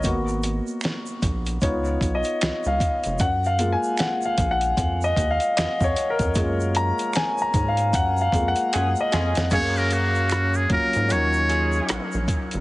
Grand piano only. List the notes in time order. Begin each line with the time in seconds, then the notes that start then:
0.04 A#3 B3 F#4
1.62 B3 D#4 F4 C#5
2.15 D#5
2.67 F5
3.20 F#5
3.46 F5
3.59 G#3 A#3 F4
3.72 G#5
3.99 F#5
4.25 F5
4.51 F#5
5.04 D#5
5.31 F5
5.57 D#5
5.84 C#5
6.10 A#4
6.35 G#3 A#3 F4
6.76 A#5
7.16 G#5
7.42 A#5
7.68 F5
7.95 F#5
8.21 F5
8.33 G#3 A#3 F4
8.48 F#5
8.74 F#5
9.01 D#5
9.51 F#3 G#3 C#4 G#4 F5
9.58 A#3
10.69 F#3 A#3 C#4 F4 A#4
11.08 F#3 C#4 D#4 F4 A#4